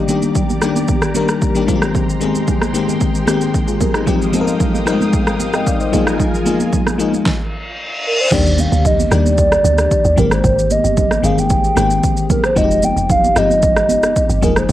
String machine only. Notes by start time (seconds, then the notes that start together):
Already playing: G4 D5 A#5 D6
1.68 G#3 G5 C6
4.07 F5 G5 D#6
5.93 F4 A#4 G#5